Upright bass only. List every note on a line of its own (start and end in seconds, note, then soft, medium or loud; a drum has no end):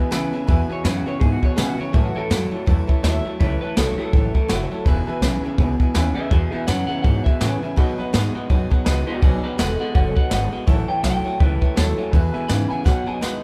0.12 0.32 C#2 medium
0.34 muted upright bass stroke soft
0.49 0.69 E2 medium
0.70 muted upright bass stroke medium
0.84 1.05 F#2 medium
1.06 muted upright bass stroke medium
1.21 1.42 G#2 medium
1.58 1.79 B2 medium
1.79 muted upright bass stroke medium
1.94 2.15 A2 medium
2.16 muted upright bass stroke medium
2.30 2.51 F#2 medium
2.52 muted upright bass stroke medium
2.67 2.88 E2 medium
2.89 muted upright bass stroke medium
3.03 3.24 D#2 loud
3.25 muted upright bass stroke medium
3.41 3.61 C#2 medium
3.77 3.98 B1 loud
3.98 muted upright bass stroke medium
4.13 4.34 A1 medium
4.50 4.70 F#1 medium
4.71 muted upright bass stroke medium
4.86 5.06 E1 medium
5.21 5.42 B1 medium
5.58 5.79 C#2 loud
5.95 6.16 D#2 loud
6.17 muted upright bass stroke medium
6.31 6.52 E2 medium
6.54 muted upright bass stroke medium
6.68 6.89 F#2 medium
6.90 muted upright bass stroke medium
7.05 7.25 G#2 medium
7.41 7.62 A2 loud
7.62 muted upright bass stroke medium
7.78 7.98 B2 medium
7.99 muted upright bass stroke medium
8.14 8.35 G#2 medium
8.35 muted upright bass stroke medium
8.50 8.71 F#2 medium
8.86 9.07 C#2 loud
9.08 muted upright bass stroke medium
9.23 9.43 B1 loud
9.44 muted upright bass stroke medium
9.59 9.79 E1 medium
9.95 10.16 F#1 loud
10.17 muted upright bass stroke medium
10.31 10.52 G#1 loud
10.53 muted upright bass stroke medium
10.68 10.88 A1 medium
10.89 muted upright bass stroke medium
11.03 11.24 B1 medium
11.26 muted upright bass stroke medium
11.41 11.61 C#2 medium
11.77 11.97 D#2 loud
11.98 muted upright bass stroke medium
12.13 12.34 E2 medium
12.35 muted upright bass stroke medium
12.50 12.71 G#2 medium
12.71 muted upright bass stroke medium
12.86 13.07 B2 medium
13.08 muted upright bass stroke medium
13.22 13.42 F#2 loud